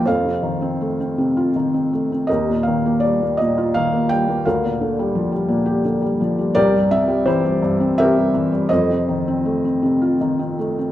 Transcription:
<<
  \new Staff \with { instrumentName = "Felt piano" } { \time 3/4 \key f \mixolydian \tempo 4 = 82 << { f''2 r4 | ees''8 f''8 d''8 ees''8 f''8 g''8 | f''2 r4 | d''8 e''8 c''4 e''4 |
ees''2 r4 | } \\ { <a' c''>2 r4 | <g' bes'>4. r4. | bes'2 r4 | <g' bes'>4 <e' g'>4 <g' bes'>4 |
<a' c''>2 r4 | } >> }
  \new Staff \with { instrumentName = "Felt piano" } { \clef bass \time 3/4 \key f \mixolydian f,16 c16 ees16 c'16 a16 c'16 c16 f'16 ees16 c'16 a16 c'16 | ees,16 bes,16 ees16 bes16 g16 bes16 bes,16 f'16 ees16 bes16 g16 bes16 | d,16 bes,16 d16 g16 f16 g16 bes,16 g'16 d16 g16 f16 g16 | c,16 g,16 c16 g16 e16 g16 g,16 c'16 c16 g16 e16 g16 |
f,16 c16 ees16 c'16 a16 c'16 c16 f'16 ees16 c'16 a16 c'16 | }
>>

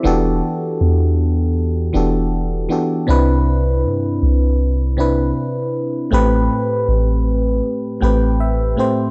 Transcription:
<<
  \new Staff \with { instrumentName = "FM electric piano" } { \time 4/4 \key e \minor \tempo 4 = 79 << { e''16 r2. r8. | r1 | r2 r8 g''8 e''4 | } \\ { <e b d' fis' g' a'>2 r8 <e b d' fis' g' a'>4 <e b d' fis' g' a'>8 | <c c' d' e' b'>2 r8 <c c' d' e' b'>4. | <a, a c' g' b'>2 r8 <a, a c' g' b'>4 <a, a c' g' c''>8 | } >> }
  \new Staff \with { instrumentName = "808-style bass" } { \clef bass \time 4/4 \key e \minor e,,8 r8 e,4. e,,4 r8 | c,4 g,8 c,4. r4 | a,,8 r8 a,,4 r8 a,,4 r8 | }
>>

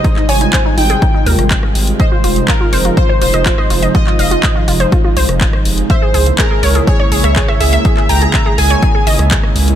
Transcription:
<<
  \new Staff \with { instrumentName = "Digital synth lead" } { \time 4/4 \key f \minor \tempo 4 = 123 ees''8 aes''4 g''2 r8 | c''4 bes'4 c''8 c''4. | ees''8 ees''4 r2 r8 | c''4 bes'4 des''8 des''4 fes''8~ |
fes''8 bes''4 aes''2 r8 | }
  \new Staff \with { instrumentName = "Synth pluck" } { \time 4/4 \key f \minor ees'16 ees'16 des''16 ees'16 c''16 ees'16 ees'16 aes'16 ees'16 ees'16 bes'4~ bes'16 r16 | ees''16 f'16 f'16 r16 f'16 f'16 c''16 f'16 f'16 c''16 f'16 ees''16 f'16 ees''16 f'16 ees''16 | f'16 f'16 f''16 f'16 ees''16 f'16 f'16 c''16 f'16 f'16 c''4~ c''16 r16 | fes''16 aes'16 aes'16 r16 aes'16 aes'16 des''16 aes'16 aes'16 des''16 aes'16 fes''16 aes'16 fes''16 aes'16 fes''16 |
aes'16 aes'16 g''16 aes'16 fes''16 aes'16 aes'16 des''16 aes'16 aes'16 ees''4~ ees''16 r16 | }
  \new Staff \with { instrumentName = "Analog synth pad" } { \clef bass \time 4/4 \key f \minor << { <g aes f'>1 | <f ees'>1~ | <f ees'>1 | <aes bes fes'>1~ |
<aes bes fes'>1 | } \\ { c1~ | c1~ | c1 | des1~ |
des1 | } >> }
  \new Staff \with { instrumentName = "Analog synth bass" } { \clef bass \time 4/4 \key f \minor r8 aes,,16 r8. aes,,16 r8. ees,16 aes,,16 r8 aes,,16 r16 | r8 f,,16 r8. f,,16 r8. ees,,16 f,,16 r8 f,,16 r16 | r8 f,,16 r8. f,,16 r8. c,16 f,,16 r8 f,,16 r16 | r8 des,16 r8. des,16 r8. bes,,16 des,16 r8 des,16 r16 |
r8 des,16 r8. des,16 r8. aes,,16 des,16 r8 des,16 r16 | }
  \new DrumStaff \with { instrumentName = "Drums" } \drummode { \time 4/4 <hh bd>16 hc16 hho16 hh16 <hc hh bd ss>8 hho16 hh16 <hh bd>8 hho16 <hh ss>16 <hc hh bd>16 ss16 hho16 hh16 | <hh bd>8 hho16 hh16 <hc hh bd ss>8 hho16 hh16 <hh bd>8 hho16 <hh ss>16 <hc hh bd>16 ss16 hho16 hh16 | <hh bd>16 hc16 hho16 hh16 <hc hh bd ss>8 hho16 hh16 <hh bd>8 hho16 <hh ss>16 <hc hh bd>16 ss16 hho16 hh16 | <hh bd>8 hho16 hh16 <hc hh bd ss>8 hho16 hh16 <hh bd>8 hho16 <hh ss>16 <hc hh bd>16 ss16 hho16 hh16 |
<hh bd>16 hc16 hho16 hh16 <hc hh bd ss>8 hho16 hh16 <hh bd>8 hho16 <hh ss>16 <hc hh bd>16 ss16 hho16 hh16 | }
>>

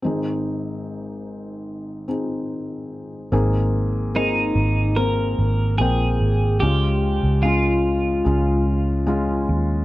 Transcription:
<<
  \new Staff \with { instrumentName = "Clean electric guitar" } { \time 4/4 \key aes \major \tempo 4 = 73 r1 | r4 ees'4 bes'4 aes'4 | g'4 f'2~ f'8 r8 | }
  \new Staff \with { instrumentName = "Felt piano" } { \time 4/4 \key aes \major <c' ees' aes'>2~ <c' ees' aes'>8 <c' ees' aes'>4. | <bes c' aes'>4 <bes c' aes'>4 <bes c' bes'>4 <bes c' g''>4 | <aes des' f'>4 <aes des' f'>4 <aes des' f'>4 <aes des' f'>4 | }
  \new Staff \with { instrumentName = "Felt piano" } { \clef bass \time 4/4 \key aes \major <aes,, aes,>1 | aes,4. r2 r8 | des4. r2 r8 | }
  \new Staff \with { instrumentName = "Fingered electric bass" } { \clef bass \time 4/4 \key aes \major r1 | aes,,4. aes,,4 aes,,8 bes,,8 aes,,8 | des,8. des,4~ des,16 des,4. ees,8 | }
>>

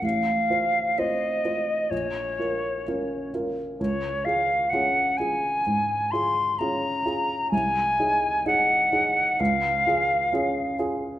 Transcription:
<<
  \new Staff \with { instrumentName = "Flute" } { \time 4/4 \key des \major \tempo 4 = 64 f''4 ees''4 des''4. r8 | des''8 f''8 ges''8 aes''4 c'''8 bes''4 | aes''4 ges''4 f''4. r8 | }
  \new Staff \with { instrumentName = "Grand piano" } { \time 4/4 \key des \major a,,8 <f' c''>8 <c' f' c''>8 <f' c''>8 bes,,8 <f' bes'>8 <des' f' bes'>8 <f' bes'>8 | des,8 <f' aes'>8 <des' f' aes'>8 <f' aes'>8 aes,8 <f' aes'>8 <des' f' aes'>8 <f' aes'>8 | c,8 <ees' aes'>8 <ees' aes'>8 <ees' aes'>8 des,8 <f' aes'>8 <des' f' aes'>8 <f' aes'>8 | }
>>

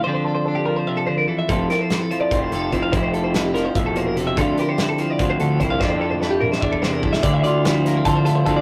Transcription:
<<
  \new Staff \with { instrumentName = "Clean electric guitar" } { \time 7/8 \key f \major \tempo 4 = 146 c''16 c''16 a'16 c''16 a'16 g'16 bes'16 c''16 e''16 a'16 c''16 bes'16 a'16 e''16 | a'8 bes'16 c''8 a'16 c''16 d''8 c''16 a'8 c''16 f''16 | c''16 c''16 a'16 c''16 a'16 g'16 bes'16 c''16 e''16 a'16 c''16 bes'16 a'16 e''16 | a'8 bes'16 c''8 a'16 c''16 d''8 c''16 a'8 c''16 f''16 |
c''16 c''16 a'16 c''16 a'16 g'16 bes'16 c''16 e''16 a'16 c''16 bes'16 a'16 e''16 | d''16 e''16 d''8 c''8 bes'8 a'16 c''16 a'16 c''16 a'16 d''16 | }
  \new Staff \with { instrumentName = "Clean electric guitar" } { \time 7/8 \key f \major << { <f c' d' a'>8 a'8 d'2~ d'8 | <f c' e' a'>8 a'8 e'4 c'4 e'8 | e'8 a'8 e'2~ e'8 | <f c' e' f'>8 g'8 e'4 c'4 e'8 |
<f d' e' a'>8 a'8 e'4 d'4 e'8 | e'8 f'8 e'8 bes16 c'16 f'8 e'8 c'8 | } \\ { d4. f8 c8 d8 e8 | f,4. f4 c4 | f,4. f8 a,8 bes,8 c8 | d4. f4 a,4 |
r2 r8 c4 | d4 f4. a,4 | } >> }
  \new Staff \with { instrumentName = "Picked electric bass" } { \clef bass \time 7/8 \key f \major r2. r8 | f,,8 r4. f,,8 f,,8 f,,8 | f,,2 e,,4. | d,8 r4. d,8 d,8 c,8 |
f,2 e,4. | d,8 d,4. d4 d,8 | }
  \new DrumStaff \with { instrumentName = "Drums" } \drummode { \time 7/8 r4 r4 r4. | <hh bd>8 <hh sn>8 <hh sn>8 hh8 <hh bd>8 hh8 <hh bd>8 | <hh bd>8 hh8 <hh sn>8 <hh sn>8 <hh bd>8 hh8 hh8 | <hh bd>8 hh8 <hh sn>8 hh8 <hh bd>8 hh8 <hh bd>8 |
<bd sn>16 tommh8 tommh16 sn8 toml16 sn16 bd16 bd16 sn8 bd16 sn16 | <hh bd>8 hh8 <hh sn>8 <hh sn>8 <hh bd>8 hh8 <hh bd>8 | }
>>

